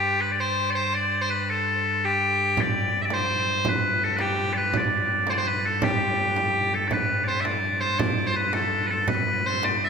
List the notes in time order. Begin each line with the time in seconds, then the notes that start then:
Already playing: G2 G4
0.21 B4
0.32 D5
0.40 C5
0.71 D5
0.75 C5
0.94 D5
1.21 C5
1.30 B4
1.50 A4
2.05 G4
2.57 G2 D5, frame drum
3.02 D5 E5
3.10 C5, frame drum
3.29 frame drum
3.65 B4, frame drum
4.04 A4
4.17 G4 B4, frame drum
4.37 frame drum
4.53 B4 D5
4.74 D5, frame drum
5.27 C5, frame drum
5.32 D5
5.38 C5
5.45 B4, frame drum
5.66 A4
5.82 G4, frame drum
6.36 frame drum
6.54 frame drum
6.74 A4, frame drum
6.88 D5, frame drum
6.92 G2 B4
7.24 D5
7.28 C5
7.41 E5
7.45 D5, frame drum
7.81 C5, frame drum
7.99 D5, frame drum
8.27 C5
8.36 B4
8.53 A4, frame drum
8.87 A4 B4
9.08 B4, frame drum
9.46 C5
9.63 D5, frame drum
9.85 E5